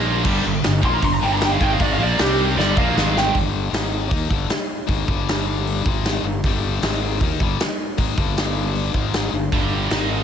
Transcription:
Already playing: A#1 A#2 F3 A#3
0.25 G1 G2 D3 G3, kick, crash
0.46 G1 G2 D3
0.64 G1 G2 D3, snare, open hi-hat
0.82 A#1 A#2 F3 A#3 C6, kick
0.94 A#5
1.02 G1 G2 D3 C6, kick, open hi-hat
1.14 A#5
1.21 G1 G2 D3 G3 G5
1.33 A#5
1.41 G5, snare, open hi-hat
1.52 F5
1.60 G#1 G#2 D#3 G#3 G5, kick
1.73 F5
1.78 G#1 G#2 D#3 G#3 D5, kick, open hi-hat
1.93 F5
1.99 A#1 A#2 F3 A#3 D5
2.18 C2 C3 G3 C4 G4, snare, open hi-hat
2.56 G1 G2 D3 G3 D5, snare
2.74 A#1 A#2 F3 A#3 F5, kick
2.94 G#1 G#2 D#3 G#3, snare
3.17 G5, snare
3.32 G1 G2 D3 G3, kick, open hi-hat
3.71 G#1 G#2 D#3 G#3, snare, open hi-hat
4.10 D#2 D#3 A#3 D#4, kick, open hi-hat
4.28 G1 G2 D3 G3, kick
4.48 muted distorted electric guitar stroke, muted fingered electric bass stroke, snare, open hi-hat
4.87 G#1 G#2 D#3 G#3, kick, open hi-hat
5.07 G1 G2 D3 G3, kick
5.28 snare, open hi-hat
5.67 open hi-hat
5.85 G#1 G#2 D#3 G#3, kick
6.05 snare, open hi-hat
6.23 G1 G2 D3
6.44 G1 G2 D3 G3, kick, open hi-hat
6.82 G#1 G#2 D#3 G#3, snare, open hi-hat
7.21 D#2 D#3 A#3 D#4, kick, open hi-hat
7.40 G1 G2 D3 G3, kick
7.60 muted distorted electric guitar stroke, muted fingered electric bass stroke, snare, open hi-hat
7.98 G#1 G#2 D#3 G#3, kick, open hi-hat
8.17 G1 G2 D3 G3, kick
8.37 snare, open hi-hat
8.75 open hi-hat
8.94 G#1 G#2 D#3 G#3, kick
9.13 snare, open hi-hat
9.32 G1 G2 D3
9.52 G1 G2 D3 G3, kick, open hi-hat
9.90 G#1 G#2 D#3 G#3, snare, open hi-hat

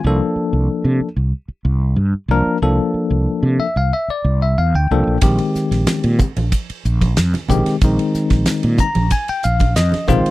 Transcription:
0.04 C2 F3 A#3 D4 A4
0.36 muted fretless electric bass stroke
0.53 C2
0.85 C3
1.00 muted fretless electric bass stroke
1.16 C2
1.48 muted fretless electric bass stroke
1.65 C2
1.96 G2
2.13 muted fretless electric bass stroke
2.28 C2 F3 A#3 D4 A#4
2.46 muted fretless electric bass stroke
2.62 C2 F3 A#3 D4 A4
2.94 muted fretless electric bass stroke
3.10 C2
3.43 C3
3.58 E5, muted fretless electric bass stroke
3.76 C2 F5
3.93 E5
4.08 D5, muted fretless electric bass stroke
4.25 C2
4.42 E5
4.58 E2 F5
4.74 D2 G5
4.91 C2 F3 A#3 D4 A4
5.07 A#1
5.21 A#1 D#3 G#3 C4 G4, kick, hi-hat pedal, ride
5.38 ride
5.55 muted fretless electric bass stroke, snare, hi-hat pedal
5.71 A#1, snare, ride
5.87 snare, hi-hat pedal, ride, high conga
6.04 A#2, ride
6.19 muted fretless electric bass stroke, kick, hi-hat pedal, low conga
6.36 A#1, ride, high conga
6.52 kick, hi-hat pedal, ride
6.70 muted fretless electric bass stroke, ride
6.85 A#1, hi-hat pedal
7.01 kick, ride, high conga
7.17 F2, snare, hi-hat pedal, ride
7.34 muted fretless electric bass stroke, snare, ride, high conga
7.48 A#1 D#3 G#3 C4 G4, kick, hi-hat pedal, low conga
7.66 muted fretless electric bass stroke, snare, ride
7.81 A#1 D#3 G#3 C4 D#4, kick, hi-hat pedal, ride
7.99 ride
8.14 muted fretless electric bass stroke, snare, hi-hat pedal
8.30 A#1, kick, snare, ride
8.46 snare, hi-hat pedal, ride, high conga
8.63 A#2, ride
8.78 A#5, muted fretless electric bass stroke, kick, hi-hat pedal, low conga
8.95 A#1, ride, high conga
9.10 G#5, kick, hi-hat pedal, ride
9.28 G5, muted fretless electric bass stroke, ride
9.43 A#1 F5, hi-hat pedal
9.60 kick, ride, high conga
9.76 F2 D#5, snare, hi-hat pedal, ride
9.92 muted fretless electric bass stroke, snare, ride, high conga
10.08 A#1 D#3 G#3 C4 F4 C5, kick, hi-hat pedal, low conga
10.26 ride

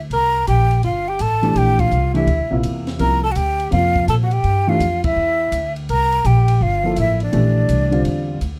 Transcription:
0.10 C2 A#4 A#5, ride
0.47 A#1 G4 G5, hi-hat pedal, ride
0.71 ride
0.83 G1 F4 F5, ride
1.08 G4 G5
1.19 A1 A4 A5, hi-hat pedal, ride
1.42 E3 A3 D4 G4, ride
1.55 A#1 G4 G5, ride
1.79 F4 F5, kick, ride
1.91 C2, hi-hat pedal
2.14 E3 A3 D4 E4 G4 E5, ride
2.27 D2, ride
2.39 C2
2.50 A#1 C3 A#3 E4 F4
2.63 E2, hi-hat pedal, ride
2.87 snare, ride
2.99 C2 C3 F3 A#3 E4 A#4 A#5, ride
3.24 A4 A5
3.31 F#4 F#5
3.35 D2 G4 G5, hi-hat pedal, ride
3.60 ride
3.71 F2 C3 F3 A#3 F4 F5, ride
3.96 kick
4.08 A#2 A4 A5, hi-hat pedal, ride
4.23 F#4 F#5
4.31 G4 G5, ride
4.44 G2, ride
4.67 E3 A3 D4 F4 G4 F5
4.80 F2, hi-hat pedal, ride
5.04 E4 E5, kick, ride
5.16 E2
5.52 D2, hi-hat pedal, ride
5.76 ride
5.89 C2 A#4 A#5, ride
6.12 ride
6.25 A#1 G4 G5, hi-hat pedal, ride
6.48 ride
6.61 G1 F4 F5
6.83 F3 A#3 E4 A4
6.96 A1 E4 E5, hi-hat pedal, ride
7.20 D4 D5, ride
7.32 A#1 E3 A3 D4 G4, ride
7.69 C2, hi-hat pedal, ride
7.91 D3 G3 C4 F4, ride
8.05 E2, ride
8.41 D2, hi-hat pedal, ride

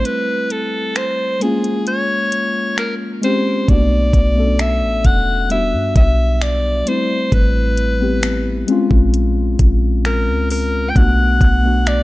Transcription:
Already playing: G3 A3 C4 E4
0.05 B4, closed hi-hat
0.50 A4, closed hi-hat
0.96 C5, finger snap, closed hi-hat
1.40 G#3 A#3 C#4 G#4, closed hi-hat
1.44 F4
1.64 closed hi-hat
1.87 C#5, closed hi-hat
2.32 closed hi-hat
2.78 A#4, finger snap, closed hi-hat
3.21 G#3 C4 C#4 C5, closed hi-hat
3.26 G4
3.67 B1 A3 B3 D4 D5, kick, closed hi-hat
3.71 F#4
4.13 B1, kick, closed hi-hat
4.35 A3 B3 C#4
4.39 A4
4.44 D4
4.59 E5, finger snap, closed hi-hat
4.82 A1
5.04 E1 F#5, kick, closed hi-hat
5.48 G3 B3 D4 E5, closed hi-hat
5.53 F#4
5.73 G2
5.96 B1 E5, kick, closed hi-hat
6.42 D5, finger snap, closed hi-hat
6.85 G3 A3 C4 C5, closed hi-hat
6.90 E4
7.32 A1 B4, kick, closed hi-hat
7.77 closed hi-hat
7.99 G3 B3 C4
8.03 G4
8.23 finger snap, closed hi-hat
8.67 G#3 C4 C#4, closed hi-hat
8.71 F4
8.91 A#1, kick
9.14 closed hi-hat
9.59 A#1, kick, closed hi-hat
10.05 A#4, finger snap, closed hi-hat
10.28 C#2
10.50 A#4, open hi-hat
10.90 G5
10.94 B1 A3 B3 D4 F#5, kick, closed hi-hat
10.99 F#4
11.41 B1, kick, closed hi-hat
11.62 A3 B3 D4
11.67 F#4
11.87 D5, finger snap, closed hi-hat

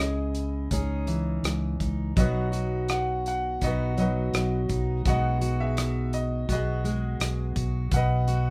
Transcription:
Already playing: C#2 C#3 E4 G#4
0.00 G#4 D#5, cross-stick
0.35 closed hi-hat
0.71 C#2 C#4 D#4 G#4, kick, closed hi-hat
1.07 E3, closed hi-hat
1.43 C#2, cross-stick, closed hi-hat
1.80 C#2 D#4, kick, closed hi-hat
2.16 B1 B2 F#3 B3 D#4 F#4 D#5, kick, closed hi-hat
2.20 F#4 B4
2.52 F#4, closed hi-hat
2.88 F#5, cross-stick, closed hi-hat
3.26 F#5, closed hi-hat
3.61 B1 B3 D#4 F#4 D#5, kick, closed hi-hat
3.66 F#4 B4
3.97 F#3 B4 D#5, closed hi-hat
4.01 F#4
4.33 B1, cross-stick, closed hi-hat
4.69 B1 D#4, kick, closed hi-hat
5.05 B1 B2 G#3 B3 F#4 F#5, kick, closed hi-hat
5.09 D#5
5.41 F#4, closed hi-hat
5.60 G#4 E5
5.77 cross-stick, closed hi-hat
6.13 D#5, closed hi-hat
6.49 B1 B3 F#4 D#5, kick, closed hi-hat
6.53 F#4 G#4
6.84 G#3, closed hi-hat
7.20 B1, cross-stick, closed hi-hat
7.56 B1 F#4, kick, closed hi-hat
7.91 B1 B2 F#5, kick, closed hi-hat
7.96 B4 D#5
8.28 F#4, closed hi-hat

